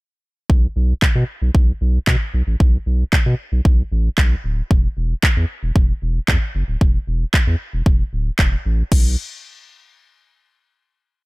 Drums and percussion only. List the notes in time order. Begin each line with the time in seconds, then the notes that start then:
0.50 kick
1.02 kick, clap
1.55 kick
2.07 kick, clap
2.60 kick
3.13 kick, clap
3.65 kick
4.18 kick, clap
4.71 kick
5.23 kick, clap
5.76 kick
6.28 kick, clap
6.81 kick
7.34 kick, clap
7.86 kick
8.39 kick, clap
8.92 kick, crash